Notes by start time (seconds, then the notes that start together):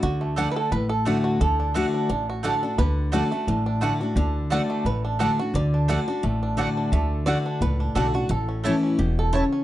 Already playing: A3 D4
0.03 D2 D3 F#4
0.21 A3
0.36 D3 A3 D4 F#4 D5 F#5
0.52 B4
0.56 A4
0.71 A1 A2 B4
0.89 A4
1.05 D3 A3 D4 F#4 D5 F#5
1.24 F#4
1.41 D2 D3 A4
1.60 D4
1.74 D3 A3 D4 F#4 D5 F#5
1.94 D4
2.10 A1 A2 D4
2.30 F#4
2.43 D3 A3 D4 F#4 A4 D5 F#5
2.63 D4 F#4
2.78 D2 D3 B4
3.12 D3 A3 D4 F#4 A4 D5 F#5
3.32 A3 D4 F#4
3.47 A1 A2 D4
3.66 D4
3.81 D3 A3 D4 F#4 D5 F#5
4.01 D4 F#4
4.16 D2 D3 D4
4.50 D3 A3 D4 F#4 D5 F#5
4.70 A3
4.85 A1 A2 B4
5.05 D4
5.19 D3 A3 D4 F#4 A4 D5 F#5
5.39 D4 F#4
5.54 D2 D3 D5
5.74 D4
5.88 D3 A3 D4 F#4 D5 F#5
6.08 D4 F#4
6.23 A1 A2 A3
6.43 D4
6.57 D3 A3 D4 F#4 D5 F#5
6.77 D4
6.92 D2 D3 A3
7.26 D3 A3 D4 F#4 D5 F#5
7.46 D4
7.61 C#2 A2 B4
7.80 D4
7.95 B1 D3 A3 D4 F#4 A4 D5 F#5
8.14 D4 F#4
8.29 A1 A2 A4
8.49 C#4
8.64 E3 A3 C#4 E4 C#5 A5
8.83 C#4
8.99 E1 B2 G4
9.19 A4
9.33 C#3 A3 E4 C#5 A5
9.53 C#4